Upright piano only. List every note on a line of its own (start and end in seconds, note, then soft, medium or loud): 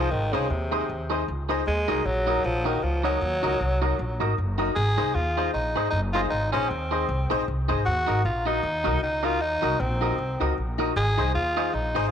0.33 0.45 D#4 medium
0.33 0.45 G#4 medium
0.33 0.45 C5 loud
0.71 0.83 D#4 medium
0.71 0.84 G#4 medium
0.71 0.84 C5 medium
1.10 1.22 D#4 medium
1.10 1.22 G#4 medium
1.10 1.23 C5 medium
1.49 1.61 D#4 medium
1.49 1.61 G#4 medium
1.49 1.62 C5 loud
1.88 2.00 D#4 loud
1.88 2.00 F#4 medium
1.88 2.00 A#4 medium
2.27 2.39 D#4 medium
2.27 2.39 F#4 medium
2.27 2.39 A#4 medium
2.65 2.77 D#4 medium
2.65 2.77 F#4 medium
2.65 2.78 A#4 loud
3.04 3.16 D#4 medium
3.04 3.16 F#4 medium
3.04 3.17 A#4 loud
3.42 3.55 D#4 medium
3.42 3.55 F#4 medium
3.42 3.55 A#4 loud
3.81 3.93 D#4 medium
3.81 3.94 F#4 medium
3.81 3.94 A#4 medium
4.20 4.32 D#4 medium
4.20 4.32 F#4 medium
4.20 4.32 A#4 medium
4.58 4.71 D#4 loud
4.58 4.71 F#4 medium
4.58 4.71 A#4 medium
4.98 5.10 D#4 loud
4.98 5.10 G#4 medium
4.98 5.10 C5 loud
5.37 5.49 D#4 medium
5.37 5.49 G#4 medium
5.37 5.49 C5 medium
5.75 5.87 D#4 medium
5.75 5.88 G#4 medium
5.75 5.88 C5 medium
6.14 6.26 D#4 medium
6.14 6.26 G#4 medium
6.14 6.27 C5 loud
6.53 6.65 D#4 medium
6.53 6.65 G#4 medium
6.53 6.65 C5 loud
6.91 7.03 D#4 medium
6.91 7.04 G#4 medium
6.91 7.04 C5 medium
7.30 7.42 D#4 loud
7.30 7.42 G#4 medium
7.30 7.42 C5 loud
7.68 7.80 D#4 medium
7.68 7.81 G#4 medium
7.68 7.81 C5 loud
8.07 8.19 D#4 medium
8.07 8.20 F#4 medium
8.07 8.20 A#4 loud
8.46 8.58 D#4 medium
8.46 8.58 F#4 medium
8.46 8.59 A#4 medium
8.84 8.96 D#4 medium
8.84 8.97 F#4 medium
8.84 8.97 A#4 medium
9.24 9.36 D#4 medium
9.24 9.36 F#4 medium
9.24 9.36 A#4 loud
9.62 9.74 D#4 medium
9.62 9.74 F#4 medium
9.62 9.75 A#4 loud
10.01 10.13 D#4 medium
10.01 10.13 F#4 medium
10.01 10.13 A#4 medium
10.40 10.52 D#4 medium
10.40 10.52 F#4 medium
10.40 10.52 A#4 loud
10.78 10.90 D#4 loud
10.78 10.91 F#4 medium
10.78 10.91 A#4 medium
11.17 11.29 D#4 medium
11.17 11.29 G#4 medium
11.17 11.30 C5 loud
11.56 11.68 D#4 medium
11.56 11.68 G#4 medium
11.56 11.69 C5 medium
11.95 12.07 D#4 medium
11.95 12.07 G#4 medium
11.95 12.07 C5 loud